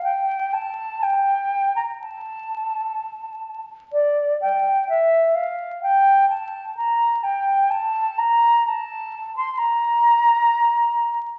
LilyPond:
\new Staff \with { instrumentName = "Flute" } { \time 4/4 \key a \phrygian \tempo 4 = 63 g''8 a''8 g''8. bes''16 a''4.~ a''16 r16 | d''8 g''8 e''8 f''8 g''8 a''8 bes''8 g''8 | a''8 bes''8 a''8. c'''16 bes''4.~ bes''16 r16 | }